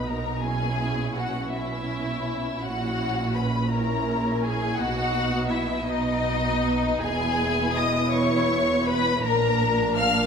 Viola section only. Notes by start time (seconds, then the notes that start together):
Already playing: B3 D#4
0.42 C#4 E4
1.52 C#4 E4
2.62 C#4 E4
3.70 C#4 E4
4.79 B3 D#4
5.87 B3 D#4
7.04 B3 E4
9.21 A#3 D4